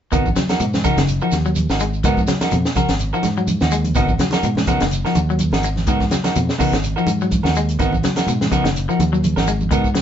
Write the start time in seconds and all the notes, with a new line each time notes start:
0.12 G#1 D#3 B3 D#4 F#4 A#4, kick, closed hi-hat, low conga, shekere
0.26 kick, high conga, shekere
0.36 F#3, snare, closed hi-hat, low conga, shekere
0.49 D#4 F#4 A#4, snare, closed hi-hat, high conga, shekere
0.60 G#2 B2, closed hi-hat, shekere
0.73 snare, high conga, shekere
0.84 C#3 D#4 F#4 A#4, kick, closed hi-hat, high conga, shekere
0.97 F#1 D#3, snare, closed hi-hat, low conga, shekere
1.08 closed hi-hat, shekere
1.21 F3 D#4 F#4 A#4, shekere
1.31 D#2, snare, closed hi-hat, high conga, shekere
1.45 F#3, shekere
1.55 closed hi-hat, high conga, shekere
1.69 G#1 D#4 F#4 A#4, snare, shekere
1.79 G#3, closed hi-hat, shekere
1.93 shekere
2.04 G#2 D#3 B3 D#4 F#4 A#4, kick, closed hi-hat, low conga, shekere
2.17 kick, high conga, shekere
2.27 F#3, snare, closed hi-hat, low conga, shekere
2.41 D#4 F#4 A#4, snare, closed hi-hat, high conga, shekere
2.51 F2 B2, closed hi-hat, shekere
2.65 snare, shekere
2.76 C#3 F#4 A#4, muted clean electric guitar stroke, muted fingered electric bass stroke, kick, closed hi-hat, high conga, shekere
2.89 G#1, snare, closed hi-hat, shekere
2.99 closed hi-hat, shekere
3.13 F3 D#4 F#4 A#4, shekere
3.23 G#2, snare, closed hi-hat, high conga, shekere
3.37 F#3, shekere
3.47 closed hi-hat, high conga, shekere
3.60 D#2 D#4 F#4, snare, high conga, shekere
3.71 G#3, closed hi-hat, shekere
3.84 closed hi-hat, high conga, shekere
3.95 G#1 D#3 B3 D#4 F#4 A#4, kick, closed hi-hat, low conga, shekere
4.07 kick, high conga, shekere
4.18 F#3, snare, closed hi-hat, low conga, shekere
4.31 D#4 F#4 A#4, snare, closed hi-hat, high conga, shekere
4.43 G#2 B2, closed hi-hat, shekere
4.55 snare, high conga, shekere
4.66 C#3 B3 D#4 F#4 A#4, kick, closed hi-hat, high conga, shekere
4.80 F#1 D#3, snare, closed hi-hat, shekere
4.91 closed hi-hat, shekere
5.05 F3 D#4 F#4 A#4, snare, shekere
5.15 D#2, closed hi-hat, high conga, shekere
5.30 F#3, shekere
5.39 closed hi-hat, high conga, shekere
5.52 G#1 D#4 F#4 A#4, snare, high conga, shekere
5.63 muted clean electric guitar stroke, closed hi-hat, shekere
5.76 snare, high conga, shekere
5.87 G#2 D#3 B3 D#4 F#4 A#4, kick, closed hi-hat, low conga, shekere
6.00 kick, snare, high conga, shekere
6.11 F#3, snare, closed hi-hat, low conga, shekere
6.24 D#4 F#4 A#4, snare, closed hi-hat, high conga, shekere
6.35 F2 B2, closed hi-hat, shekere
6.49 snare, shekere
6.58 C#3 B3 D#4 F#4 A#4, muted fingered electric bass stroke, kick, open hi-hat, high conga, shekere
6.72 G#1 D#3, snare, closed hi-hat, shekere
6.83 closed hi-hat, shekere
6.96 F3 D#4 F#4 A#4, shekere
7.07 G#2, closed hi-hat, high conga, shekere
7.21 F#3, shekere
7.31 kick, closed hi-hat, high conga, shekere
7.43 D#2 D#4 F#4 A#4, snare, high conga, shekere
7.55 G#3, closed hi-hat, shekere
7.69 closed hi-hat, shekere
7.79 G#1 D#3 B3 D#4 F#4 A#4, kick, closed hi-hat, low conga, shekere
7.92 kick, high conga, shekere
8.03 F#3, snare, closed hi-hat, low conga, shekere
8.16 D#4 F#4 A#4, snare, closed hi-hat, high conga, shekere
8.27 G#2 B2, closed hi-hat, shekere
8.41 snare, high conga, shekere
8.51 C#3 B3 D#4 F#4 A#4, kick, closed hi-hat, high conga, shekere
8.64 F#1 D#3, snare, closed hi-hat, shekere
8.76 closed hi-hat, shekere
8.89 F3 D#4 F#4 A#4, shekere
8.99 D#2, closed hi-hat, high conga, shekere
9.13 F#3, shekere
9.24 closed hi-hat, high conga, shekere
9.36 G#1 D#4 F#4 A#4, snare, high conga, shekere
9.47 G#3, closed hi-hat, shekere
9.61 high conga, shekere
9.71 G#2 D#3 B3 D#4 F#4 A#4, kick, closed hi-hat, low conga, shekere
9.84 kick, shekere
9.95 F#3, snare, closed hi-hat, low conga, shekere